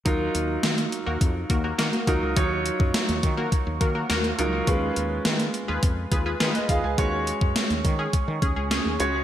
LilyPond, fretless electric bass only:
\new Staff \with { instrumentName = "Fretless electric bass" } { \clef bass \time 4/4 \key ees \minor \tempo 4 = 104 ees,8 ees,8 ees8 r16 ees,16 f,8 ees,8 ees16 r16 ees,16 des,16 | ees,8. ges,16 r16 ees,16 ees8 r16 ees,16 ees8 ees,8 des,8 | ees,8 ees,8 ees8 r16 ees,16 f,8 ees,8 ees16 r16 ees,16 des,16 | ees,8. ges,16 r16 ees,16 ees8 r16 ees16 ees,16 des,8 ees,16 des,8 | }